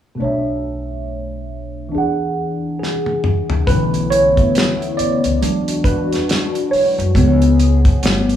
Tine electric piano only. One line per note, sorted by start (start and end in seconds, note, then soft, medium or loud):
0.15 1.88 B2 medium
0.15 1.89 A3 medium
0.20 1.90 D4 medium
0.20 1.91 C#5 medium
0.24 1.92 E5 medium
1.89 3.62 E3 medium
1.89 3.63 D4 medium
1.95 2.78 G#4 medium
1.95 3.66 F#5 medium
2.79 3.70 G#4 medium
3.67 4.28 D3 medium
3.67 4.28 E3 medium
3.67 4.29 A3 medium
3.67 4.29 C#4 medium
3.67 4.12 B4 loud
4.10 5.00 C#5 loud
4.97 5.87 D5 medium
5.42 7.11 F#3 medium
5.42 7.12 G#3 soft
5.42 7.12 D4 medium
5.84 6.74 B4 loud
6.71 8.36 C#5 medium
7.16 7.98 F3 medium
7.16 7.99 G#3 soft
7.16 7.99 B3 medium
8.03 8.36 F3 soft
8.03 8.36 A3 soft
8.03 8.36 B3 medium